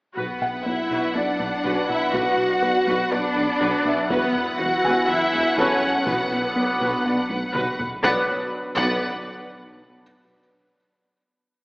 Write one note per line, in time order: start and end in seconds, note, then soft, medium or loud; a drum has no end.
0.17 0.25 B1 soft
0.17 0.27 B1 soft
0.17 4.12 B1 soft
0.17 0.32 B2 medium
0.17 6.04 F#3 medium
0.17 0.63 B3 medium
0.17 0.63 B3 soft
0.17 6.04 B3 medium
0.17 4.07 D4 medium
0.17 0.40 F#4 soft
0.17 0.40 B4 soft
0.17 0.63 B4 soft
0.17 6.04 B4 medium
0.17 4.07 F#5 soft
0.17 taiko medium
0.41 0.56 B2 medium
0.41 1.85 F#5 soft
0.66 0.74 B1 soft
0.66 0.77 B1 soft
0.66 0.81 B3 soft
0.66 1.14 E4 medium
0.66 1.15 E4 medium
0.66 0.75 B4 soft
0.66 1.15 E5 medium
0.91 0.99 B1 medium
0.91 1.01 B1 medium
0.91 1.05 B2 medium
0.91 1.14 F#4 soft
0.91 1.14 B4 soft
0.91 taiko soft
1.15 1.26 B1 soft
1.15 1.24 B1 soft
1.15 1.30 B3 medium
1.15 1.89 D4 medium
1.15 1.88 D4 soft
1.15 1.24 B4 soft
1.15 1.90 D5 medium
1.15 1.24 D5 soft
1.40 1.48 B1 soft
1.40 1.50 B1 soft
1.40 1.55 B2 medium
1.40 1.48 B4 soft
1.65 1.73 B1 medium
1.65 1.75 B1 medium
1.65 1.80 B2 medium
1.65 1.88 F#4 medium
1.65 1.88 B4 medium
1.89 2.04 B2 medium
1.89 2.13 E4 medium
1.89 2.14 E4 medium
1.89 2.13 E5 medium
2.13 2.22 B1 medium
2.13 2.24 B1 medium
2.13 2.28 B2 medium
2.13 2.37 F#4 medium
2.13 3.10 F#4 medium
2.13 3.12 F#4 medium
2.13 2.37 B4 medium
2.13 3.13 F#5 medium
2.13 taiko medium
2.38 2.53 B2 medium
2.62 2.73 B1 soft
2.62 2.71 B1 soft
2.62 2.77 B3 medium
2.62 2.71 B4 soft
2.87 2.97 B1 medium
2.87 2.96 B1 medium
2.87 3.02 B2 medium
2.87 3.10 F#4 medium
2.87 3.10 B4 soft
2.87 taiko medium
3.12 3.21 B1 soft
3.12 3.22 B1 soft
3.12 3.27 B3 medium
3.12 4.11 D4 medium
3.12 3.20 B4 medium
3.12 3.20 D5 soft
3.12 4.11 D5 medium
3.36 3.46 B1 medium
3.36 3.45 B1 soft
3.36 3.51 B2 medium
3.36 3.45 B4 medium
3.60 3.70 B1 medium
3.60 3.71 B1 medium
3.60 3.76 B2 medium
3.60 3.84 F#4 medium
3.60 3.84 B4 medium
3.60 taiko medium
3.85 4.00 B2 medium
3.85 5.30 E5 medium
4.10 4.20 E1 medium
4.10 6.09 E1 medium
4.10 4.25 E2 medium
4.10 4.18 E2 medium
4.10 4.59 B3 medium
4.10 6.07 E4 medium
4.10 4.33 F#4 medium
4.10 4.34 B4 medium
4.10 4.59 B4 medium
4.10 7.80 F#5 medium
4.10 taiko loud
4.35 4.50 E2 medium
4.59 4.69 E1 medium
4.59 4.68 E2 soft
4.59 4.74 E3 medium
4.59 5.08 F#4 medium
4.59 5.09 F#4 medium
4.59 4.67 B4 medium
4.59 5.09 F#5 medium
4.84 4.94 E1 medium
4.84 4.92 E2 medium
4.84 4.99 E2 medium
4.84 5.07 F#4 medium
4.84 5.07 B4 medium
4.84 6.28 G#5 medium
4.84 taiko medium
5.08 5.18 E1 medium
5.08 5.17 E2 medium
5.08 5.23 E3 medium
5.08 5.58 E4 medium
5.08 5.16 B4 soft
5.08 5.16 E5 medium
5.08 5.59 E5 medium
5.33 5.43 E1 medium
5.33 5.48 E2 medium
5.33 5.42 E2 soft
5.33 5.41 B4 medium
5.58 5.68 E1 medium
5.58 5.73 E2 medium
5.58 5.66 E2 medium
5.58 6.06 C#4 medium
5.58 6.08 C#4 medium
5.58 5.81 F#4 medium
5.58 7.02 A4 soft
5.58 5.81 B4 medium
5.58 6.07 C#5 medium
5.58 7.02 A5 medium
5.58 taiko medium
5.82 5.97 E2 medium
6.07 6.17 B1 medium
6.07 6.15 B1 medium
6.07 8.04 B1 medium
6.07 6.22 B2 medium
6.07 8.00 F#3 medium
6.07 7.55 B3 medium
6.07 7.52 B3 soft
6.07 8.00 B3 medium
6.07 8.03 D4 medium
6.07 6.30 F#4 medium
6.07 6.30 B4 medium
6.07 8.00 B4 medium
6.07 7.53 B4 medium
6.07 taiko loud
6.31 6.46 B2 medium
6.56 6.64 B1 soft
6.56 6.67 B1 soft
6.56 6.71 B3 medium
6.56 6.64 B4 soft
6.80 6.89 B1 medium
6.80 6.91 B1 medium
6.80 6.96 B2 loud
6.80 7.04 F#4 medium
6.80 7.04 B4 soft
6.80 taiko medium
7.05 7.13 B1 soft
7.05 7.16 B1 soft
7.05 7.20 B3 medium
7.05 7.14 B4 soft
7.05 7.14 D5 soft
7.30 7.38 B1 soft
7.30 7.41 B1 soft
7.30 7.45 B2 medium
7.30 7.38 B4 medium
7.30 taiko high medium
7.55 7.63 B1 medium
7.55 7.65 B1 medium
7.55 7.70 B2 medium
7.55 7.78 F#4 medium
7.55 7.78 B4 medium
7.55 8.01 B5 soft
7.55 taiko mid medium
7.79 7.94 B2 medium
7.79 taiko low medium
8.03 8.18 B1 medium
8.03 8.14 B1 medium
8.03 8.18 B1 medium
8.03 8.32 F#3 medium
8.03 8.25 F#3 medium
8.03 8.31 B3 medium
8.03 8.18 B3 loud
8.03 8.32 D4 medium
8.03 8.31 B4 medium
8.03 8.18 B4 medium
8.03 8.18 D5 medium
8.03 8.18 F#5 medium
8.03 taiko loud
8.77 8.98 B1 medium
8.77 9.05 B1 medium
8.77 9.05 B3 loud
8.77 9.05 B4 medium
8.77 9.05 D5 medium
8.77 9.05 F#5 medium
8.77 taiko medium